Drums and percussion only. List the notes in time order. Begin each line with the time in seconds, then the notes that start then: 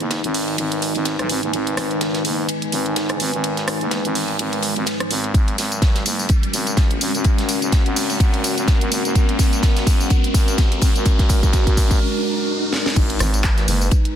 0.00 closed hi-hat
0.11 snare, closed hi-hat, ride
0.24 closed hi-hat
0.34 open hi-hat
0.48 ride
0.58 closed hi-hat, ride
0.72 closed hi-hat
0.82 open hi-hat, ride
0.95 closed hi-hat, ride
1.05 snare, closed hi-hat, ride
1.19 cross-stick, closed hi-hat
1.29 open hi-hat, ride
1.43 closed hi-hat
1.53 closed hi-hat, ride
1.67 closed hi-hat
1.77 cross-stick, snare, open hi-hat, ride
1.91 closed hi-hat
2.01 snare, closed hi-hat, ride
2.14 snare, closed hi-hat
2.25 open hi-hat, ride
2.49 closed hi-hat, ride
2.62 closed hi-hat
2.72 open hi-hat, ride
2.86 closed hi-hat, ride
2.96 snare, closed hi-hat, ride
3.09 cross-stick, closed hi-hat, ride
3.20 open hi-hat, ride
3.34 closed hi-hat
3.44 closed hi-hat, ride
3.57 snare, closed hi-hat
3.68 cross-stick, open hi-hat, ride
3.81 closed hi-hat
3.91 snare, closed hi-hat, ride
4.05 closed hi-hat
4.15 open hi-hat
4.28 ride
4.39 closed hi-hat, ride
4.53 closed hi-hat
4.62 open hi-hat, ride
4.76 closed hi-hat, ride
4.86 snare, closed hi-hat, ride
5.00 cross-stick, closed hi-hat
5.11 open hi-hat, ride
5.24 closed hi-hat
5.34 kick, closed hi-hat, ride, tambourine
5.48 closed hi-hat
5.58 snare, open hi-hat, ride, tambourine
5.72 closed hi-hat, tambourine
5.82 kick, snare, closed hi-hat, ride, tambourine
5.95 snare, closed hi-hat
6.06 open hi-hat, ride, tambourine
6.19 tambourine
6.29 kick, closed hi-hat, ride, tambourine
6.43 closed hi-hat
6.53 open hi-hat, ride, tambourine
6.67 closed hi-hat, ride, tambourine
6.77 kick, snare, closed hi-hat, ride, tambourine
6.90 closed hi-hat, ride
7.01 open hi-hat, ride, tambourine
7.15 closed hi-hat, tambourine
7.24 kick, closed hi-hat, ride, tambourine
7.38 snare, closed hi-hat
7.49 open hi-hat, ride, tambourine
7.62 closed hi-hat, tambourine
7.72 kick, snare, closed hi-hat, ride, tambourine
7.86 closed hi-hat
7.96 open hi-hat, tambourine
8.09 ride, tambourine
8.20 kick, closed hi-hat, ride, tambourine
8.34 closed hi-hat
8.44 open hi-hat, ride, tambourine
8.58 closed hi-hat, ride, tambourine
8.68 kick, snare, closed hi-hat, ride, tambourine
8.81 closed hi-hat
8.92 open hi-hat, ride, tambourine
9.05 closed hi-hat, tambourine
9.15 kick, closed hi-hat, ride, tambourine
9.29 closed hi-hat
9.39 kick, snare, open hi-hat, ride, tambourine
9.53 closed hi-hat, tambourine
9.63 kick, snare, closed hi-hat, ride, tambourine
9.77 snare, closed hi-hat
9.87 kick, open hi-hat, ride, tambourine
10.00 tambourine
10.10 kick, closed hi-hat, ride, tambourine
10.24 closed hi-hat
10.34 kick, open hi-hat, ride, tambourine
10.48 closed hi-hat, ride, tambourine
10.58 kick, snare, closed hi-hat, ride, tambourine
10.72 closed hi-hat, ride
10.81 kick, open hi-hat, ride, tambourine
10.96 closed hi-hat, tambourine
11.05 kick, closed hi-hat, ride, tambourine
11.19 kick, snare, closed hi-hat
11.29 kick, open hi-hat, ride, tambourine
11.43 kick, closed hi-hat, tambourine
11.53 kick, snare, closed hi-hat, ride, tambourine
11.67 kick, closed hi-hat
11.77 kick, open hi-hat, tambourine
11.91 kick, closed hi-hat, ride, tambourine
12.73 snare
12.86 snare
12.96 kick, closed hi-hat, crash, ride, tambourine
13.10 closed hi-hat
13.19 cross-stick, snare, open hi-hat, ride, tambourine
13.34 closed hi-hat, tambourine
13.44 kick, snare, clap, closed hi-hat, ride
13.57 snare, closed hi-hat
13.68 open hi-hat, ride, tambourine
13.81 tambourine
13.91 kick, closed hi-hat, ride, tambourine
14.05 closed hi-hat